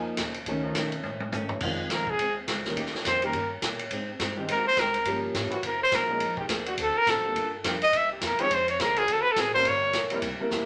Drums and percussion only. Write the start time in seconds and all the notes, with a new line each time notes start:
0.17 kick, snare, hi-hat pedal, ride
0.34 ride
0.46 kick, ride
0.75 kick, snare, hi-hat pedal, ride
0.92 ride
1.03 high tom
1.20 high tom
1.32 hi-hat pedal, high tom
1.49 floor tom
1.61 kick, crash
1.90 kick, snare, hi-hat pedal, ride
2.07 kick
2.19 kick, ride
2.48 kick, snare, hi-hat pedal, ride
2.65 snare
2.76 kick, ride
2.86 snare
2.95 snare
3.05 kick, snare, hi-hat pedal, ride
3.22 ride
3.33 kick, ride
3.62 kick, snare, hi-hat pedal, ride
3.79 ride
3.91 kick, ride
4.20 kick, snare, hi-hat pedal, ride
4.48 kick, ride
4.77 kick, snare, hi-hat pedal, ride
4.94 ride
5.05 kick, ride
5.34 kick, snare, hi-hat pedal, ride
5.51 ride
5.63 kick, ride
5.92 kick, snare, hi-hat pedal, ride
6.20 kick, ride
6.37 kick
6.49 kick, snare, hi-hat pedal, ride
6.66 ride
6.78 kick, ride
7.07 kick, snare, hi-hat pedal, ride
7.35 kick, ride
7.64 kick, snare, hi-hat pedal, ride
7.82 ride
7.93 kick, ride
8.21 kick, snare, hi-hat pedal, ride
8.39 ride
8.50 kick, ride
8.68 ride
8.79 kick, snare, hi-hat pedal, ride
8.96 ride
9.08 kick, ride
9.36 kick, snare, hi-hat pedal, ride
9.65 kick, ride
9.93 kick, snare, hi-hat pedal, ride
10.10 ride
10.22 kick, ride
10.51 snare, hi-hat pedal